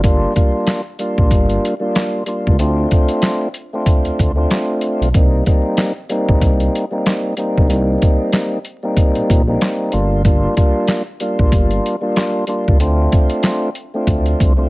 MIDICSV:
0, 0, Header, 1, 4, 480
1, 0, Start_track
1, 0, Tempo, 638298
1, 28, Time_signature, 4, 2, 24, 8
1, 11047, End_track
2, 0, Start_track
2, 0, Title_t, "Tonewheel organ"
2, 0, Program_c, 0, 16
2, 22, Note_on_c, 0, 55, 95
2, 28, Note_on_c, 0, 58, 79
2, 32, Note_on_c, 0, 62, 90
2, 38, Note_on_c, 0, 65, 101
2, 248, Note_off_c, 0, 55, 0
2, 252, Note_off_c, 0, 58, 0
2, 254, Note_off_c, 0, 62, 0
2, 257, Note_off_c, 0, 65, 0
2, 257, Note_on_c, 0, 55, 93
2, 263, Note_on_c, 0, 58, 80
2, 269, Note_on_c, 0, 62, 89
2, 274, Note_on_c, 0, 65, 104
2, 608, Note_off_c, 0, 55, 0
2, 611, Note_off_c, 0, 58, 0
2, 614, Note_off_c, 0, 62, 0
2, 616, Note_off_c, 0, 65, 0
2, 742, Note_on_c, 0, 55, 88
2, 747, Note_on_c, 0, 58, 82
2, 753, Note_on_c, 0, 62, 83
2, 758, Note_on_c, 0, 65, 101
2, 1308, Note_off_c, 0, 55, 0
2, 1311, Note_off_c, 0, 58, 0
2, 1314, Note_off_c, 0, 62, 0
2, 1316, Note_off_c, 0, 65, 0
2, 1351, Note_on_c, 0, 55, 96
2, 1357, Note_on_c, 0, 58, 91
2, 1362, Note_on_c, 0, 62, 91
2, 1369, Note_on_c, 0, 65, 101
2, 1676, Note_off_c, 0, 55, 0
2, 1679, Note_off_c, 0, 58, 0
2, 1681, Note_off_c, 0, 62, 0
2, 1684, Note_off_c, 0, 65, 0
2, 1700, Note_on_c, 0, 55, 72
2, 1705, Note_on_c, 0, 58, 70
2, 1711, Note_on_c, 0, 62, 74
2, 1716, Note_on_c, 0, 65, 82
2, 1928, Note_off_c, 0, 55, 0
2, 1930, Note_off_c, 0, 58, 0
2, 1933, Note_off_c, 0, 62, 0
2, 1936, Note_off_c, 0, 65, 0
2, 1943, Note_on_c, 0, 57, 91
2, 1949, Note_on_c, 0, 60, 83
2, 1953, Note_on_c, 0, 62, 86
2, 1959, Note_on_c, 0, 65, 105
2, 2617, Note_off_c, 0, 57, 0
2, 2620, Note_off_c, 0, 60, 0
2, 2622, Note_off_c, 0, 62, 0
2, 2625, Note_off_c, 0, 65, 0
2, 2806, Note_on_c, 0, 57, 91
2, 2810, Note_on_c, 0, 60, 86
2, 2817, Note_on_c, 0, 62, 82
2, 2822, Note_on_c, 0, 65, 94
2, 3242, Note_off_c, 0, 57, 0
2, 3244, Note_off_c, 0, 60, 0
2, 3247, Note_off_c, 0, 62, 0
2, 3250, Note_off_c, 0, 65, 0
2, 3275, Note_on_c, 0, 57, 88
2, 3281, Note_on_c, 0, 60, 92
2, 3286, Note_on_c, 0, 62, 84
2, 3293, Note_on_c, 0, 65, 102
2, 3822, Note_off_c, 0, 57, 0
2, 3825, Note_off_c, 0, 60, 0
2, 3827, Note_off_c, 0, 62, 0
2, 3830, Note_off_c, 0, 65, 0
2, 3866, Note_on_c, 0, 55, 95
2, 3872, Note_on_c, 0, 58, 83
2, 3878, Note_on_c, 0, 60, 84
2, 3883, Note_on_c, 0, 63, 98
2, 4091, Note_off_c, 0, 55, 0
2, 4094, Note_off_c, 0, 58, 0
2, 4097, Note_off_c, 0, 60, 0
2, 4099, Note_off_c, 0, 63, 0
2, 4102, Note_on_c, 0, 55, 100
2, 4108, Note_on_c, 0, 58, 87
2, 4112, Note_on_c, 0, 60, 89
2, 4119, Note_on_c, 0, 63, 109
2, 4450, Note_off_c, 0, 55, 0
2, 4453, Note_off_c, 0, 58, 0
2, 4456, Note_off_c, 0, 60, 0
2, 4459, Note_off_c, 0, 63, 0
2, 4580, Note_on_c, 0, 55, 93
2, 4586, Note_on_c, 0, 58, 91
2, 4590, Note_on_c, 0, 60, 86
2, 4598, Note_on_c, 0, 63, 100
2, 5147, Note_off_c, 0, 55, 0
2, 5150, Note_off_c, 0, 58, 0
2, 5152, Note_off_c, 0, 60, 0
2, 5156, Note_off_c, 0, 63, 0
2, 5195, Note_on_c, 0, 55, 92
2, 5202, Note_on_c, 0, 58, 84
2, 5207, Note_on_c, 0, 60, 80
2, 5212, Note_on_c, 0, 63, 99
2, 5518, Note_off_c, 0, 55, 0
2, 5521, Note_off_c, 0, 58, 0
2, 5524, Note_off_c, 0, 60, 0
2, 5526, Note_off_c, 0, 63, 0
2, 5542, Note_on_c, 0, 55, 83
2, 5547, Note_on_c, 0, 58, 70
2, 5552, Note_on_c, 0, 60, 72
2, 5558, Note_on_c, 0, 63, 94
2, 5765, Note_off_c, 0, 55, 0
2, 5770, Note_off_c, 0, 58, 0
2, 5774, Note_off_c, 0, 60, 0
2, 5774, Note_on_c, 0, 55, 92
2, 5777, Note_off_c, 0, 63, 0
2, 5779, Note_on_c, 0, 58, 86
2, 5785, Note_on_c, 0, 60, 86
2, 5790, Note_on_c, 0, 63, 105
2, 6452, Note_off_c, 0, 55, 0
2, 6455, Note_off_c, 0, 58, 0
2, 6458, Note_off_c, 0, 60, 0
2, 6460, Note_off_c, 0, 63, 0
2, 6639, Note_on_c, 0, 55, 84
2, 6644, Note_on_c, 0, 58, 86
2, 6650, Note_on_c, 0, 60, 84
2, 6654, Note_on_c, 0, 63, 100
2, 7078, Note_off_c, 0, 55, 0
2, 7081, Note_off_c, 0, 58, 0
2, 7084, Note_off_c, 0, 60, 0
2, 7086, Note_off_c, 0, 63, 0
2, 7123, Note_on_c, 0, 55, 93
2, 7128, Note_on_c, 0, 58, 85
2, 7134, Note_on_c, 0, 60, 90
2, 7139, Note_on_c, 0, 63, 104
2, 7445, Note_off_c, 0, 55, 0
2, 7450, Note_off_c, 0, 58, 0
2, 7454, Note_on_c, 0, 55, 93
2, 7459, Note_on_c, 0, 58, 89
2, 7464, Note_on_c, 0, 62, 86
2, 7469, Note_on_c, 0, 65, 100
2, 7471, Note_off_c, 0, 60, 0
2, 7474, Note_off_c, 0, 63, 0
2, 7685, Note_off_c, 0, 55, 0
2, 7687, Note_off_c, 0, 58, 0
2, 7690, Note_off_c, 0, 62, 0
2, 7692, Note_off_c, 0, 65, 0
2, 7703, Note_on_c, 0, 55, 96
2, 7709, Note_on_c, 0, 58, 77
2, 7714, Note_on_c, 0, 62, 88
2, 7720, Note_on_c, 0, 65, 105
2, 7927, Note_off_c, 0, 55, 0
2, 7932, Note_off_c, 0, 58, 0
2, 7935, Note_off_c, 0, 62, 0
2, 7936, Note_on_c, 0, 55, 98
2, 7938, Note_off_c, 0, 65, 0
2, 7942, Note_on_c, 0, 58, 82
2, 7947, Note_on_c, 0, 62, 93
2, 7953, Note_on_c, 0, 65, 105
2, 8287, Note_off_c, 0, 55, 0
2, 8291, Note_off_c, 0, 58, 0
2, 8293, Note_off_c, 0, 62, 0
2, 8296, Note_off_c, 0, 65, 0
2, 8424, Note_on_c, 0, 55, 89
2, 8429, Note_on_c, 0, 58, 81
2, 8433, Note_on_c, 0, 62, 85
2, 8439, Note_on_c, 0, 65, 101
2, 8989, Note_off_c, 0, 55, 0
2, 8992, Note_off_c, 0, 58, 0
2, 8994, Note_off_c, 0, 62, 0
2, 8997, Note_off_c, 0, 65, 0
2, 9031, Note_on_c, 0, 55, 95
2, 9036, Note_on_c, 0, 58, 91
2, 9042, Note_on_c, 0, 62, 93
2, 9047, Note_on_c, 0, 65, 103
2, 9356, Note_off_c, 0, 55, 0
2, 9358, Note_off_c, 0, 58, 0
2, 9361, Note_off_c, 0, 62, 0
2, 9364, Note_off_c, 0, 65, 0
2, 9380, Note_on_c, 0, 55, 75
2, 9386, Note_on_c, 0, 58, 68
2, 9391, Note_on_c, 0, 62, 77
2, 9396, Note_on_c, 0, 65, 85
2, 9607, Note_off_c, 0, 55, 0
2, 9611, Note_off_c, 0, 58, 0
2, 9613, Note_off_c, 0, 62, 0
2, 9616, Note_off_c, 0, 65, 0
2, 9622, Note_on_c, 0, 57, 92
2, 9626, Note_on_c, 0, 60, 86
2, 9632, Note_on_c, 0, 62, 84
2, 9637, Note_on_c, 0, 65, 107
2, 10296, Note_off_c, 0, 57, 0
2, 10298, Note_off_c, 0, 60, 0
2, 10301, Note_off_c, 0, 62, 0
2, 10304, Note_off_c, 0, 65, 0
2, 10483, Note_on_c, 0, 57, 91
2, 10488, Note_on_c, 0, 60, 85
2, 10494, Note_on_c, 0, 62, 84
2, 10499, Note_on_c, 0, 65, 96
2, 10920, Note_off_c, 0, 57, 0
2, 10923, Note_off_c, 0, 60, 0
2, 10926, Note_off_c, 0, 62, 0
2, 10929, Note_off_c, 0, 65, 0
2, 10954, Note_on_c, 0, 57, 85
2, 10959, Note_on_c, 0, 60, 89
2, 10964, Note_on_c, 0, 62, 86
2, 10970, Note_on_c, 0, 65, 102
2, 11047, Note_off_c, 0, 57, 0
2, 11047, Note_off_c, 0, 60, 0
2, 11047, Note_off_c, 0, 62, 0
2, 11047, Note_off_c, 0, 65, 0
2, 11047, End_track
3, 0, Start_track
3, 0, Title_t, "Analog synth bass"
3, 0, Program_c, 1, 38
3, 0, Note_on_c, 1, 31, 98
3, 194, Note_off_c, 1, 31, 0
3, 889, Note_on_c, 1, 34, 99
3, 985, Note_on_c, 1, 31, 96
3, 996, Note_off_c, 1, 34, 0
3, 1189, Note_off_c, 1, 31, 0
3, 1858, Note_on_c, 1, 37, 88
3, 1938, Note_off_c, 1, 37, 0
3, 1951, Note_on_c, 1, 38, 108
3, 2152, Note_off_c, 1, 38, 0
3, 3049, Note_on_c, 1, 38, 48
3, 3089, Note_off_c, 1, 38, 0
3, 3154, Note_on_c, 1, 38, 94
3, 3354, Note_off_c, 1, 38, 0
3, 3768, Note_on_c, 1, 35, 87
3, 3853, Note_off_c, 1, 35, 0
3, 3869, Note_on_c, 1, 36, 101
3, 4071, Note_off_c, 1, 36, 0
3, 4728, Note_on_c, 1, 34, 89
3, 4813, Note_off_c, 1, 34, 0
3, 4824, Note_on_c, 1, 36, 100
3, 5028, Note_off_c, 1, 36, 0
3, 5698, Note_on_c, 1, 35, 89
3, 5779, Note_off_c, 1, 35, 0
3, 5792, Note_on_c, 1, 36, 108
3, 5993, Note_off_c, 1, 36, 0
3, 6889, Note_on_c, 1, 34, 48
3, 6929, Note_off_c, 1, 34, 0
3, 6994, Note_on_c, 1, 34, 92
3, 7194, Note_off_c, 1, 34, 0
3, 7470, Note_on_c, 1, 31, 99
3, 7874, Note_off_c, 1, 31, 0
3, 8567, Note_on_c, 1, 34, 90
3, 8652, Note_off_c, 1, 34, 0
3, 8664, Note_on_c, 1, 31, 104
3, 8868, Note_off_c, 1, 31, 0
3, 9536, Note_on_c, 1, 37, 92
3, 9617, Note_off_c, 1, 37, 0
3, 9629, Note_on_c, 1, 38, 110
3, 9831, Note_off_c, 1, 38, 0
3, 10583, Note_on_c, 1, 38, 100
3, 10787, Note_off_c, 1, 38, 0
3, 10833, Note_on_c, 1, 36, 88
3, 11033, Note_off_c, 1, 36, 0
3, 11047, End_track
4, 0, Start_track
4, 0, Title_t, "Drums"
4, 28, Note_on_c, 9, 42, 98
4, 29, Note_on_c, 9, 36, 116
4, 103, Note_off_c, 9, 42, 0
4, 104, Note_off_c, 9, 36, 0
4, 269, Note_on_c, 9, 42, 72
4, 273, Note_on_c, 9, 36, 91
4, 345, Note_off_c, 9, 42, 0
4, 348, Note_off_c, 9, 36, 0
4, 501, Note_on_c, 9, 42, 80
4, 506, Note_on_c, 9, 38, 120
4, 512, Note_on_c, 9, 39, 92
4, 576, Note_off_c, 9, 42, 0
4, 581, Note_off_c, 9, 38, 0
4, 587, Note_off_c, 9, 39, 0
4, 744, Note_on_c, 9, 42, 69
4, 820, Note_off_c, 9, 42, 0
4, 887, Note_on_c, 9, 36, 86
4, 962, Note_off_c, 9, 36, 0
4, 984, Note_on_c, 9, 36, 93
4, 987, Note_on_c, 9, 42, 100
4, 1059, Note_off_c, 9, 36, 0
4, 1062, Note_off_c, 9, 42, 0
4, 1125, Note_on_c, 9, 42, 46
4, 1200, Note_off_c, 9, 42, 0
4, 1240, Note_on_c, 9, 42, 80
4, 1315, Note_off_c, 9, 42, 0
4, 1469, Note_on_c, 9, 42, 91
4, 1473, Note_on_c, 9, 38, 115
4, 1479, Note_on_c, 9, 39, 97
4, 1545, Note_off_c, 9, 42, 0
4, 1548, Note_off_c, 9, 38, 0
4, 1555, Note_off_c, 9, 39, 0
4, 1701, Note_on_c, 9, 42, 75
4, 1776, Note_off_c, 9, 42, 0
4, 1857, Note_on_c, 9, 36, 86
4, 1932, Note_off_c, 9, 36, 0
4, 1948, Note_on_c, 9, 42, 98
4, 2023, Note_off_c, 9, 42, 0
4, 2189, Note_on_c, 9, 42, 69
4, 2193, Note_on_c, 9, 36, 94
4, 2264, Note_off_c, 9, 42, 0
4, 2268, Note_off_c, 9, 36, 0
4, 2320, Note_on_c, 9, 42, 60
4, 2395, Note_off_c, 9, 42, 0
4, 2421, Note_on_c, 9, 42, 76
4, 2426, Note_on_c, 9, 38, 118
4, 2432, Note_on_c, 9, 39, 93
4, 2496, Note_off_c, 9, 42, 0
4, 2501, Note_off_c, 9, 38, 0
4, 2507, Note_off_c, 9, 39, 0
4, 2663, Note_on_c, 9, 42, 71
4, 2738, Note_off_c, 9, 42, 0
4, 2904, Note_on_c, 9, 36, 97
4, 2906, Note_on_c, 9, 42, 97
4, 2979, Note_off_c, 9, 36, 0
4, 2981, Note_off_c, 9, 42, 0
4, 3044, Note_on_c, 9, 42, 43
4, 3120, Note_off_c, 9, 42, 0
4, 3153, Note_on_c, 9, 36, 95
4, 3159, Note_on_c, 9, 42, 77
4, 3228, Note_off_c, 9, 36, 0
4, 3234, Note_off_c, 9, 42, 0
4, 3388, Note_on_c, 9, 42, 89
4, 3392, Note_on_c, 9, 38, 118
4, 3398, Note_on_c, 9, 39, 98
4, 3463, Note_off_c, 9, 42, 0
4, 3467, Note_off_c, 9, 38, 0
4, 3473, Note_off_c, 9, 39, 0
4, 3619, Note_on_c, 9, 42, 77
4, 3695, Note_off_c, 9, 42, 0
4, 3777, Note_on_c, 9, 42, 50
4, 3852, Note_off_c, 9, 42, 0
4, 3868, Note_on_c, 9, 42, 98
4, 3869, Note_on_c, 9, 36, 120
4, 3943, Note_off_c, 9, 42, 0
4, 3944, Note_off_c, 9, 36, 0
4, 4109, Note_on_c, 9, 42, 68
4, 4113, Note_on_c, 9, 36, 94
4, 4184, Note_off_c, 9, 42, 0
4, 4188, Note_off_c, 9, 36, 0
4, 4339, Note_on_c, 9, 42, 83
4, 4344, Note_on_c, 9, 38, 115
4, 4350, Note_on_c, 9, 39, 93
4, 4414, Note_off_c, 9, 42, 0
4, 4419, Note_off_c, 9, 38, 0
4, 4426, Note_off_c, 9, 39, 0
4, 4583, Note_on_c, 9, 42, 72
4, 4658, Note_off_c, 9, 42, 0
4, 4727, Note_on_c, 9, 36, 90
4, 4802, Note_off_c, 9, 36, 0
4, 4824, Note_on_c, 9, 36, 94
4, 4825, Note_on_c, 9, 42, 103
4, 4899, Note_off_c, 9, 36, 0
4, 4900, Note_off_c, 9, 42, 0
4, 4964, Note_on_c, 9, 42, 45
4, 5039, Note_off_c, 9, 42, 0
4, 5079, Note_on_c, 9, 42, 80
4, 5154, Note_off_c, 9, 42, 0
4, 5309, Note_on_c, 9, 42, 89
4, 5313, Note_on_c, 9, 38, 116
4, 5319, Note_on_c, 9, 39, 97
4, 5384, Note_off_c, 9, 42, 0
4, 5388, Note_off_c, 9, 38, 0
4, 5394, Note_off_c, 9, 39, 0
4, 5541, Note_on_c, 9, 42, 78
4, 5616, Note_off_c, 9, 42, 0
4, 5697, Note_on_c, 9, 36, 84
4, 5772, Note_off_c, 9, 36, 0
4, 5789, Note_on_c, 9, 42, 95
4, 5864, Note_off_c, 9, 42, 0
4, 6029, Note_on_c, 9, 42, 69
4, 6033, Note_on_c, 9, 36, 95
4, 6105, Note_off_c, 9, 42, 0
4, 6108, Note_off_c, 9, 36, 0
4, 6260, Note_on_c, 9, 42, 83
4, 6265, Note_on_c, 9, 38, 119
4, 6271, Note_on_c, 9, 39, 94
4, 6335, Note_off_c, 9, 42, 0
4, 6340, Note_off_c, 9, 38, 0
4, 6347, Note_off_c, 9, 39, 0
4, 6503, Note_on_c, 9, 42, 70
4, 6578, Note_off_c, 9, 42, 0
4, 6743, Note_on_c, 9, 36, 97
4, 6746, Note_on_c, 9, 42, 98
4, 6818, Note_off_c, 9, 36, 0
4, 6821, Note_off_c, 9, 42, 0
4, 6884, Note_on_c, 9, 42, 44
4, 6959, Note_off_c, 9, 42, 0
4, 6993, Note_on_c, 9, 36, 96
4, 6999, Note_on_c, 9, 42, 83
4, 7068, Note_off_c, 9, 36, 0
4, 7074, Note_off_c, 9, 42, 0
4, 7228, Note_on_c, 9, 42, 91
4, 7232, Note_on_c, 9, 38, 115
4, 7238, Note_on_c, 9, 39, 98
4, 7303, Note_off_c, 9, 42, 0
4, 7307, Note_off_c, 9, 38, 0
4, 7313, Note_off_c, 9, 39, 0
4, 7459, Note_on_c, 9, 42, 77
4, 7534, Note_off_c, 9, 42, 0
4, 7707, Note_on_c, 9, 36, 118
4, 7707, Note_on_c, 9, 42, 95
4, 7782, Note_off_c, 9, 42, 0
4, 7783, Note_off_c, 9, 36, 0
4, 7948, Note_on_c, 9, 42, 68
4, 7951, Note_on_c, 9, 36, 94
4, 8023, Note_off_c, 9, 42, 0
4, 8027, Note_off_c, 9, 36, 0
4, 8179, Note_on_c, 9, 42, 78
4, 8184, Note_on_c, 9, 38, 122
4, 8190, Note_on_c, 9, 39, 96
4, 8254, Note_off_c, 9, 42, 0
4, 8259, Note_off_c, 9, 38, 0
4, 8265, Note_off_c, 9, 39, 0
4, 8422, Note_on_c, 9, 42, 71
4, 8497, Note_off_c, 9, 42, 0
4, 8565, Note_on_c, 9, 36, 91
4, 8641, Note_off_c, 9, 36, 0
4, 8663, Note_on_c, 9, 36, 96
4, 8664, Note_on_c, 9, 42, 103
4, 8738, Note_off_c, 9, 36, 0
4, 8739, Note_off_c, 9, 42, 0
4, 8802, Note_on_c, 9, 42, 44
4, 8877, Note_off_c, 9, 42, 0
4, 8918, Note_on_c, 9, 42, 81
4, 8993, Note_off_c, 9, 42, 0
4, 9147, Note_on_c, 9, 42, 90
4, 9151, Note_on_c, 9, 38, 111
4, 9157, Note_on_c, 9, 39, 98
4, 9222, Note_off_c, 9, 42, 0
4, 9226, Note_off_c, 9, 38, 0
4, 9232, Note_off_c, 9, 39, 0
4, 9378, Note_on_c, 9, 42, 74
4, 9453, Note_off_c, 9, 42, 0
4, 9535, Note_on_c, 9, 36, 89
4, 9610, Note_off_c, 9, 36, 0
4, 9626, Note_on_c, 9, 42, 95
4, 9701, Note_off_c, 9, 42, 0
4, 9867, Note_on_c, 9, 42, 70
4, 9871, Note_on_c, 9, 36, 94
4, 9942, Note_off_c, 9, 42, 0
4, 9946, Note_off_c, 9, 36, 0
4, 9999, Note_on_c, 9, 42, 59
4, 10074, Note_off_c, 9, 42, 0
4, 10097, Note_on_c, 9, 42, 80
4, 10102, Note_on_c, 9, 38, 120
4, 10109, Note_on_c, 9, 39, 96
4, 10172, Note_off_c, 9, 42, 0
4, 10177, Note_off_c, 9, 38, 0
4, 10184, Note_off_c, 9, 39, 0
4, 10341, Note_on_c, 9, 42, 71
4, 10416, Note_off_c, 9, 42, 0
4, 10582, Note_on_c, 9, 36, 95
4, 10583, Note_on_c, 9, 42, 103
4, 10657, Note_off_c, 9, 36, 0
4, 10659, Note_off_c, 9, 42, 0
4, 10722, Note_on_c, 9, 42, 43
4, 10797, Note_off_c, 9, 42, 0
4, 10831, Note_on_c, 9, 36, 99
4, 10837, Note_on_c, 9, 42, 79
4, 10907, Note_off_c, 9, 36, 0
4, 10912, Note_off_c, 9, 42, 0
4, 11047, End_track
0, 0, End_of_file